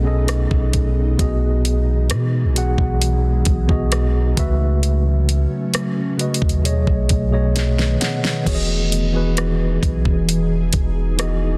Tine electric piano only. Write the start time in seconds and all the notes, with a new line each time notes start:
Already playing: B2 B3 C#4 G#4 A4 D#5
0.03 B2 B3 C#4 G#4 A4
0.07 D#5
1.17 B2 B3 F#4 G#4
1.21 D#5
2.54 B2 B3 F#4 G#4
2.58 F#5
3.67 B2 B3 F#4 G#4 D#5
4.35 C#3 A3 F#4 B4
4.39 E5
6.17 C#3 A3 F#4 B4
6.21 D#5
6.62 B2 A3 G#4 C#5
6.66 D#5
7.30 B2 A3 G#4 C#5 D#5
7.78 B4 D#5
8.01 D#5 F#5
8.23 B4 D#5
8.44 E3 B3 F#4 G#4
8.48 C#5
8.55 D#5
9.12 E3 B3 F#4 G#4
9.16 B4
11.17 E3 B3 F#4 G#4
11.21 D#5